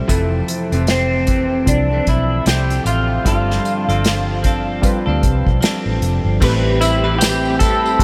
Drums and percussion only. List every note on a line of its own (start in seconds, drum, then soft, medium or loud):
0.09 kick loud
0.09 closed hi-hat loud
0.48 closed hi-hat medium
0.72 closed hi-hat soft
0.87 snare loud
0.87 closed hi-hat medium
1.27 kick medium
1.27 closed hi-hat medium
1.67 kick medium
1.67 closed hi-hat medium
2.07 kick medium
2.07 closed hi-hat medium
2.46 snare medium
2.46 closed hi-hat medium
2.70 closed hi-hat medium
2.86 closed hi-hat medium
3.26 kick loud
3.26 closed hi-hat medium
3.51 snare soft
3.65 closed hi-hat medium
3.89 closed hi-hat soft
4.04 snare medium
4.04 closed hi-hat medium
4.44 kick medium
4.44 closed hi-hat medium
4.83 kick medium
4.83 closed hi-hat medium
5.23 kick medium
5.23 closed hi-hat medium
5.47 kick medium
5.62 snare medium
5.62 closed hi-hat medium
6.02 closed hi-hat medium
6.42 kick loud
6.42 crash medium
6.42 tambourine medium
6.81 closed hi-hat medium
6.81 tambourine soft
7.21 snare medium
7.21 closed hi-hat medium
7.21 tambourine medium
7.45 tambourine soft
7.60 kick medium
7.60 closed hi-hat medium
7.60 tambourine soft
7.86 tambourine soft
7.99 kick medium
7.99 closed hi-hat medium
7.99 tambourine soft